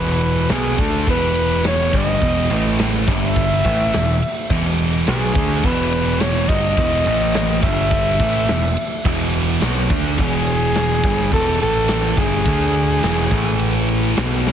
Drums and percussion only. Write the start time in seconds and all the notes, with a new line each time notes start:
0.21 ride
0.49 snare, ride
0.78 kick, ride
1.07 kick, crash
1.35 ride
1.64 snare, ride
1.93 kick, ride
2.21 kick, ride
2.50 ride
2.79 snare, ride
3.08 kick, ride
3.36 kick, ride
3.65 kick, ride
3.93 snare, ride
4.22 ride
4.50 kick, ride
4.78 ride
5.07 snare, ride
5.35 kick, ride
5.64 kick, crash
5.92 ride
6.20 snare, ride
6.49 kick, ride
6.77 kick, ride
7.06 ride
7.34 snare, ride
7.62 kick, ride
7.91 kick, ride
8.20 kick, ride
8.48 snare, ride
8.77 ride
9.05 kick, ride
9.34 ride
9.61 snare, ride
9.90 kick, ride
10.18 kick, crash
10.47 ride
10.75 snare, ride
11.03 kick, ride
11.31 kick, ride
11.60 ride
11.88 snare, ride
12.17 kick, ride
12.46 kick, ride
12.74 ride
13.03 snare, ride
13.31 kick, ride
13.59 ride
13.88 ride
14.17 snare, ride
14.47 snare